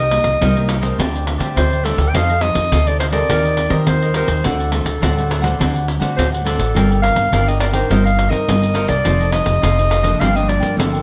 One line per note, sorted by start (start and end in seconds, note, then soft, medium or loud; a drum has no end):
0.00 0.21 C2 medium
0.00 0.39 C3 medium
0.00 0.12 A#4 soft
0.00 0.12 C5 soft
0.00 0.13 D#5 soft
0.00 0.95 D#5 loud
0.00 pandeiro soft
0.11 0.37 A#3 medium
0.11 0.37 D#4 soft
0.11 0.37 G4 medium
0.11 muted cavaquinho stroke soft
0.11 pandeiro medium
0.24 0.38 C2 medium
0.24 pandeiro medium
0.41 0.91 C2 medium
0.41 0.96 G3 medium
0.41 0.50 A#3 medium
0.41 0.55 D#4 medium
0.41 0.51 D#4 medium
0.41 0.51 G4 medium
0.41 0.56 A#4 medium
0.41 0.56 C5 medium
0.41 0.55 D#5 medium
0.41 pandeiro medium
0.56 0.81 A#3 medium
0.56 0.81 D#4 medium
0.56 0.81 G4 medium
0.56 0.68 A#4 soft
0.56 0.68 C5 soft
0.56 0.69 D#5 medium
0.56 pandeiro soft
0.68 0.83 D#4 soft
0.68 0.83 A#4 soft
0.68 0.81 C5 soft
0.68 0.80 D#5 soft
0.68 pandeiro medium
0.81 1.37 A3 medium
0.81 1.37 C4 medium
0.81 1.37 G4 medium
0.81 0.98 A#4 medium
0.81 0.97 C5 medium
0.81 0.97 D#5 medium
0.81 pandeiro medium
0.98 1.36 D2 medium
0.98 1.54 D3 soft
0.98 1.12 D4 medium
0.98 1.13 G4 medium
0.98 1.13 C5 medium
0.98 1.11 D5 medium
0.98 pandeiro medium
1.13 1.25 G4 soft
1.13 1.26 C5 soft
1.13 1.26 D5 soft
1.13 pandeiro soft
1.26 muted cavaquinho stroke soft
1.26 pandeiro medium
1.38 1.53 D3 medium
1.38 1.80 A3 medium
1.38 1.80 C4 medium
1.38 1.69 G4 medium
1.38 1.81 G4 medium
1.38 1.69 C5 medium
1.38 1.68 D5 medium
1.38 pandeiro medium
1.56 1.93 D2 medium
1.56 2.12 A2 soft
1.56 1.86 C5 medium
1.56 pandeiro medium
1.70 1.83 G4 soft
1.70 1.84 C5 soft
1.70 1.84 D5 soft
1.70 pandeiro soft
1.84 2.04 A3 medium
1.84 2.04 C4 medium
1.84 1.98 D4 medium
1.84 1.98 G4 medium
1.84 2.04 G4 medium
1.84 2.10 A4 medium
1.84 1.97 C5 medium
1.84 1.95 D5 medium
1.84 pandeiro medium
1.97 2.11 D2 medium
1.97 2.13 G4 soft
1.97 2.12 D5 soft
1.97 pandeiro medium
2.09 2.17 G5 medium
2.13 2.51 F2 medium
2.13 2.69 F3 medium
2.13 2.31 C4 medium
2.13 2.32 D#4 medium
2.13 2.27 F4 medium
2.13 2.28 A4 medium
2.13 2.32 A4 medium
2.13 2.28 C5 medium
2.13 2.28 D#5 medium
2.13 2.43 F5 loud
2.13 pandeiro medium
2.29 2.41 A4 soft
2.29 2.41 C5 soft
2.29 2.42 D#5 soft
2.29 pandeiro soft
2.41 2.70 C4 medium
2.41 2.70 D#4 soft
2.41 2.70 A4 medium
2.41 2.89 D#5 loud
2.41 muted cavaquinho stroke soft
2.41 pandeiro medium
2.55 2.69 F2 medium
2.55 pandeiro medium
2.72 3.21 D2 medium
2.72 3.27 C3 soft
2.72 2.85 F4 medium
2.72 2.86 A4 medium
2.72 2.86 C5 medium
2.72 2.85 D#5 medium
2.72 pandeiro medium
2.87 3.11 C4 medium
2.87 3.11 D#4 medium
2.87 3.11 A4 medium
2.87 2.99 A4 soft
2.87 3.00 C5 soft
2.87 2.99 D5 medium
2.87 3.00 D#5 soft
2.87 pandeiro soft
2.99 3.13 F4 soft
2.99 3.13 A4 soft
2.99 3.06 C5 medium
2.99 3.12 C5 soft
2.99 3.11 D#5 soft
2.99 pandeiro medium
3.12 3.67 C4 medium
3.12 3.67 G4 medium
3.12 3.28 A4 medium
3.12 3.67 A#4 medium
3.12 3.28 C5 medium
3.12 3.82 D5 loud
3.12 3.27 D#5 medium
3.12 pandeiro medium
3.29 3.66 D#2 medium
3.29 3.84 D#3 medium
3.29 3.43 D#4 medium
3.29 3.43 A#4 medium
3.29 3.44 C5 medium
3.29 3.43 D#5 medium
3.29 pandeiro medium
3.45 3.58 A#4 soft
3.45 3.57 C5 soft
3.45 3.58 D#5 soft
3.45 pandeiro soft
3.57 muted cavaquinho stroke soft
3.57 pandeiro medium
3.70 3.84 D#3 medium
3.70 4.10 C4 medium
3.70 4.10 G4 medium
3.70 4.10 A#4 medium
3.70 4.01 A#4 medium
3.70 4.00 C5 medium
3.70 3.99 D#5 medium
3.70 pandeiro medium
3.86 4.24 D#2 medium
3.86 4.42 D#3 soft
3.86 4.14 C5 medium
3.86 pandeiro medium
4.02 4.14 A#4 soft
4.02 4.14 C5 soft
4.02 4.15 D#5 medium
4.02 pandeiro soft
4.14 4.42 C4 medium
4.14 4.28 D#4 medium
4.14 4.42 G4 medium
4.14 4.29 A#4 medium
4.14 4.42 A#4 medium
4.14 4.28 C5 medium
4.14 4.47 C5 medium
4.14 4.26 D#5 medium
4.14 pandeiro medium
4.27 4.41 D#2 medium
4.27 4.43 A#4 soft
4.27 4.43 C5 soft
4.27 4.42 D#5 soft
4.27 pandeiro medium
4.43 4.81 D2 medium
4.43 4.99 D3 medium
4.43 4.68 A3 soft
4.43 4.69 C4 medium
4.43 4.57 D4 medium
4.43 4.69 F#4 medium
4.43 4.73 A4 medium
4.43 4.58 C5 medium
4.43 4.58 D5 medium
4.43 4.58 F#5 medium
4.43 pandeiro medium
4.59 4.70 C5 soft
4.59 4.71 D5 soft
4.59 4.71 F#5 soft
4.59 pandeiro soft
4.71 4.90 A3 medium
4.71 4.90 C4 soft
4.71 4.90 F#4 soft
4.71 5.87 A4 medium
4.71 muted cavaquinho stroke soft
4.71 pandeiro medium
4.85 4.99 D2 medium
4.85 pandeiro medium
5.01 5.51 D2 medium
5.01 5.57 A2 medium
5.01 5.11 A3 medium
5.01 5.11 C4 medium
5.01 5.15 D4 medium
5.01 5.11 F#4 medium
5.01 5.15 C5 medium
5.01 5.16 D5 medium
5.01 5.15 F#5 medium
5.01 pandeiro medium
5.17 5.41 A3 medium
5.17 5.42 C4 medium
5.17 5.42 F#4 medium
5.17 5.28 C5 soft
5.17 5.29 D5 soft
5.17 5.29 F#5 soft
5.17 pandeiro soft
5.28 5.43 D4 soft
5.28 5.43 C5 soft
5.28 5.42 D5 soft
5.28 5.40 F#5 soft
5.28 pandeiro medium
5.42 5.54 A3 medium
5.42 5.54 C4 medium
5.42 5.54 F#4 medium
5.42 5.58 C5 medium
5.42 5.58 D5 medium
5.42 5.57 F#5 medium
5.42 pandeiro medium
5.58 5.97 D2 medium
5.58 6.14 D3 soft
5.58 5.98 A3 soft
5.58 5.98 C4 soft
5.58 5.73 D4 medium
5.58 5.99 F#4 medium
5.58 5.73 C5 medium
5.58 5.73 D5 medium
5.58 5.72 F#5 medium
5.58 pandeiro medium
5.74 5.86 C5 soft
5.74 5.86 D5 soft
5.74 5.87 F#5 soft
5.74 pandeiro soft
5.86 muted cavaquinho stroke soft
5.86 pandeiro medium
6.00 6.14 D3 medium
6.00 6.40 A3 medium
6.00 6.40 C4 medium
6.00 6.40 F#4 medium
6.00 6.30 C5 medium
6.00 6.30 D5 medium
6.00 6.29 F#5 medium
6.00 pandeiro medium
6.17 6.54 D2 medium
6.17 6.72 A2 soft
6.17 6.30 C5 medium
6.17 pandeiro medium
6.32 6.44 C5 soft
6.32 6.45 D5 soft
6.32 6.45 F#5 soft
6.32 pandeiro soft
6.45 6.64 A3 medium
6.45 6.64 C4 soft
6.45 6.59 D4 medium
6.45 6.64 F#4 medium
6.45 6.99 A4 medium
6.45 6.58 C5 medium
6.45 6.57 D5 medium
6.45 6.56 F#5 medium
6.45 pandeiro medium
6.57 6.72 A1 medium
6.57 6.73 C5 soft
6.57 6.73 D5 soft
6.57 6.72 F#5 soft
6.57 pandeiro medium
6.74 7.12 G1 medium
6.74 7.30 G3 medium
6.74 6.99 D4 medium
6.74 6.88 F4 medium
6.74 6.99 F4 soft
6.74 6.88 A#4 medium
6.74 6.99 A#4 medium
6.74 6.89 D5 medium
6.74 6.89 G5 medium
6.74 pandeiro medium
6.90 7.02 A#4 soft
6.90 7.02 D5 soft
6.90 7.03 G5 soft
6.90 pandeiro soft
7.02 7.27 D4 medium
7.02 7.27 F4 soft
7.02 7.27 A#4 medium
7.02 7.50 F5 loud
7.02 muted cavaquinho stroke soft
7.02 pandeiro medium
7.16 7.29 G1 medium
7.16 pandeiro medium
7.32 7.82 G1 medium
7.32 7.87 D3 medium
7.32 7.42 D4 medium
7.32 7.46 F4 medium
7.32 7.42 F4 medium
7.32 7.42 A#4 medium
7.32 7.46 A#4 medium
7.32 7.46 D5 medium
7.32 7.46 G5 medium
7.32 pandeiro medium
7.47 7.71 D4 medium
7.47 7.71 F4 medium
7.47 7.72 A#4 medium
7.47 7.60 A#4 soft
7.47 7.60 D5 soft
7.47 7.60 D#5 medium
7.47 7.60 G5 medium
7.47 pandeiro soft
7.59 7.74 F4 soft
7.59 7.74 A#4 medium
7.59 7.67 D5 medium
7.59 7.73 D5 soft
7.59 7.72 G5 soft
7.59 pandeiro medium
7.72 8.27 C4 medium
7.72 8.27 D#4 medium
7.72 8.27 A#4 medium
7.72 7.89 A#4 soft
7.72 8.01 C5 medium
7.72 7.88 D5 medium
7.72 7.88 G5 medium
7.72 pandeiro medium
7.89 8.27 G1 medium
7.89 8.44 G3 medium
7.89 8.03 D#4 medium
7.89 8.03 A#4 medium
7.89 8.04 C5 medium
7.89 8.03 D#5 medium
7.89 pandeiro medium
8.04 8.16 A#4 soft
8.04 8.17 C5 soft
8.04 8.17 D#5 soft
8.04 8.32 F5 loud
8.04 pandeiro soft
8.17 muted cavaquinho stroke soft
8.17 pandeiro medium
8.29 8.44 G2 medium
8.29 8.70 C4 medium
8.29 8.70 D#4 medium
8.29 8.70 A#4 medium
8.29 8.60 A#4 medium
8.29 8.60 C5 medium
8.29 8.59 D#5 medium
8.29 8.89 D#5 medium
8.29 pandeiro medium
8.47 8.85 G1 medium
8.47 9.02 G3 soft
8.47 pandeiro medium
8.62 8.73 A#4 soft
8.62 8.74 C5 soft
8.62 8.75 D#5 soft
8.62 pandeiro soft
8.74 8.94 C4 medium
8.74 8.88 D#4 medium
8.74 8.94 D#4 soft
8.74 8.88 A#4 medium
8.74 8.94 A#4 medium
8.74 8.88 C5 medium
8.74 8.86 D#5 medium
8.74 pandeiro medium
8.87 9.02 C2 medium
8.87 9.04 A#4 soft
8.87 9.03 C5 soft
8.87 9.33 D5 medium
8.87 9.02 D#5 soft
8.87 pandeiro medium
9.04 9.42 F1 medium
9.04 9.60 F3 medium
9.04 9.29 C4 medium
9.04 9.29 D#4 medium
9.04 9.18 F4 medium
9.04 9.18 A4 medium
9.04 9.30 A4 medium
9.04 9.19 C5 medium
9.04 9.19 D#5 medium
9.04 pandeiro medium
9.20 9.32 A4 soft
9.20 9.32 C5 soft
9.20 9.32 D#5 soft
9.20 pandeiro soft
9.32 9.60 C4 soft
9.32 9.60 D#4 soft
9.32 9.60 A4 medium
9.32 10.21 D#5 loud
9.32 muted cavaquinho stroke soft
9.32 pandeiro medium
9.46 9.59 F1 medium
9.46 pandeiro medium
9.62 10.12 F1 loud
9.62 10.17 C3 medium
9.62 9.76 F4 medium
9.62 9.76 A4 medium
9.62 9.76 C5 medium
9.62 9.76 D#5 medium
9.62 pandeiro medium
9.77 10.02 C4 medium
9.77 10.02 D#4 medium
9.77 10.02 A4 medium
9.77 9.89 A4 soft
9.77 9.89 C5 soft
9.77 9.90 D#5 soft
9.77 pandeiro soft
9.89 10.03 F4 soft
9.89 10.04 A4 soft
9.89 10.03 C5 soft
9.89 10.02 D#5 soft
9.89 pandeiro medium
10.03 10.29 F3 medium
10.03 10.29 A#3 medium
10.03 10.29 D4 medium
10.03 10.19 A4 medium
10.03 10.19 C5 medium
10.03 10.18 D#5 medium
10.03 pandeiro medium
10.20 10.57 G1 medium
10.20 10.75 G2 medium
10.20 10.33 F4 medium
10.20 10.34 A#4 medium
10.20 10.34 D5 medium
10.20 10.37 F5 medium
10.20 10.34 G5 medium
10.20 pandeiro medium
10.35 10.74 F3 medium
10.35 10.74 A#3 medium
10.35 10.74 D4 medium
10.35 10.47 A#4 soft
10.35 10.47 D5 soft
10.35 10.50 D#5 medium
10.35 10.47 G5 soft
10.35 pandeiro soft
10.47 10.77 D5 medium
10.47 muted cavaquinho stroke soft
10.47 pandeiro medium
10.60 10.74 G2 medium
10.60 10.91 A#4 soft
10.60 10.90 D5 medium
10.60 10.89 G5 medium
10.60 pandeiro medium
10.77 11.02 G1 medium
10.77 11.02 D3 soft
10.77 11.02 F3 soft
10.77 11.02 A#3 soft
10.77 11.02 D4 medium
10.77 11.02 A4 medium
10.77 pandeiro medium
10.92 11.02 A#4 soft
10.92 11.02 D5 soft
10.92 11.02 G5 soft
10.92 pandeiro soft